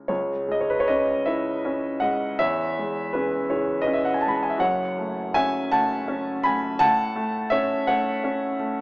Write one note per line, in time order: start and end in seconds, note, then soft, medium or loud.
0.08 2.36 C#2 medium
0.08 0.49 G#4 soft
0.08 0.51 C#5 medium
0.48 1.12 G#3 soft
0.48 0.61 D#5 medium
0.61 0.70 C#5 medium
0.70 0.80 B4 medium
0.80 0.89 C#5 medium
0.88 1.50 C#4 soft
0.88 1.25 B4 medium
0.88 1.27 D#5 medium
1.26 1.87 E4 soft
1.26 1.98 C#5 medium
1.26 2.01 E5 medium
1.65 2.25 C#4 soft
2.00 2.40 G#3 soft
2.00 2.37 D#5 medium
2.00 2.39 F#5 medium
2.39 4.59 E2 medium
2.39 3.11 C#5 medium
2.39 3.14 E5 medium
2.79 3.37 G#3 soft
3.13 3.73 C#4 soft
3.13 3.49 G#4 soft
3.13 3.50 B4 medium
3.50 4.10 E4 soft
3.50 3.82 G#4 soft
3.50 3.84 C#5 medium
3.82 3.96 B4 medium
3.82 3.96 D#5 medium
3.87 4.47 C#4 soft
3.93 4.05 E5 medium
4.05 4.14 F#5 medium
4.14 4.22 G#5 medium
4.21 4.28 A5 medium
4.26 4.63 G#3 soft
4.26 4.36 B5 medium
4.35 4.44 A5 medium
4.43 4.52 G#5 medium
4.50 4.61 E5 medium
4.58 6.75 F#1 soft
4.58 6.74 F#2 medium
4.58 5.32 C#5 medium
4.58 5.35 F#5 medium
4.98 5.58 A3 soft
5.34 5.94 C#4 soft
5.34 5.70 E5 medium
5.34 5.72 G#5 medium
5.71 6.30 A3 medium
5.71 6.40 F#5 medium
5.71 6.43 A5 medium
6.08 6.65 C#4 medium
6.43 6.81 A3 soft
6.43 6.78 G#5 medium
6.43 6.80 B5 medium
6.79 8.81 A2 medium
6.79 7.48 F#5 medium
6.79 7.52 A5 loud
7.16 7.74 A3 medium
7.50 8.10 C#4 soft
7.50 7.86 C#5 medium
7.50 7.88 E5 medium
7.87 8.47 A3 medium
7.87 8.81 C#5 medium
7.87 8.81 F#5 medium
8.24 8.81 C#4 medium
8.59 8.81 A3 medium